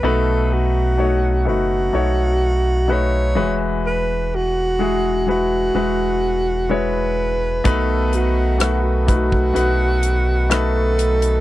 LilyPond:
<<
  \new Staff \with { instrumentName = "Alto saxophone" } { \time 4/4 \key b \mixolydian \tempo 4 = 63 a'8 fis'4 fis'4. cis''8 r8 | b'8 fis'4 fis'4. b'4 | a'8 fis'8 r8 fis'4. a'4 | }
  \new Staff \with { instrumentName = "Grand piano" } { \time 4/4 \key b \mixolydian <a dis' fis' b'>4 <a dis' fis' cis''>8 <a dis' fis' b'>8 <a dis' fis' cis''>4 <a dis' fis' b'>8 <gis e' fis' b'>8~ | <gis e' fis' b'>4 <gis e' fis' gis'>8 <gis e' fis' b'>8 <gis e' fis' b'>4 <gis e' fis' cis''>4 | <a dis' fis' b'>4 <a dis' fis' b'>8 <a dis' fis' b'>8 <a dis' fis' b'>4 <a dis' fis' b'>4 | }
  \new Staff \with { instrumentName = "Grand piano" } { \clef bass \time 4/4 \key b \mixolydian b,4. r2 e8~ | e4 r2. | b,4. r2 r8 | }
  \new Staff \with { instrumentName = "Harmonium" } { \time 4/4 \key b \mixolydian r1 | r1 | <dis a b fis'>1 | }
  \new Staff \with { instrumentName = "Sub bass" } { \clef bass \time 4/4 \key b \mixolydian b,,4. fis,,8 b,,4. e,,8~ | e,,2 e,,2 | b,,2 b,,2 | }
  \new DrumStaff \with { instrumentName = "Drums" } \drummode { \time 4/4 r4 r4 r4 r4 | r4 r4 r4 r4 | <hh bd>8 hh8 <hh ss>8 <hh bd>16 bd16 hh8 hh8 <hh ss>8 hh16 hh16 | }
>>